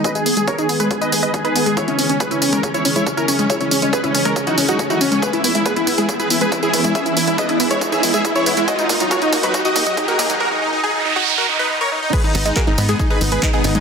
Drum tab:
CC |----------------|----------------|----------------|----------------|
HH |xxoxxxoxxxoxxxox|xxoxxxoxxxoxxxox|xxoxxxoxxxoxxxox|xxoxxxoxxxoxxxox|
TB |xxxxxxxxxxxxxxxx|xxxxxxxxxxxxxxxx|xxxxxxxxxxxxxxxx|xxxxxxxxxxxxxxxx|
CP |----------------|----------------|----------------|----------------|
T2 |----------------|----------------|----------------|--------------o-|
BD |o---o---o---o---|o---o---o---o---|o---o---o---o---|o---o---o---o---|

CC |----------------|----------------|----------------|x---------------|
HH |xxoxxxoxxxoxxxox|xxoxxxoxxxoxxxox|----------------|xxoxxxoxxxoxxxox|
TB |xxxxxxxxxxxxxxxx|xxxxxxxxxxxxxxxx|----------------|xxxxxxxxxxxxxxxx|
CP |----------------|----------------|----------------|----x-------x---|
T2 |---o-----o------|--------------o-|----------------|---------------o|
BD |o---o---o---o---|o-o-o-o-o-o-o-o-|----------------|o---o---o---o---|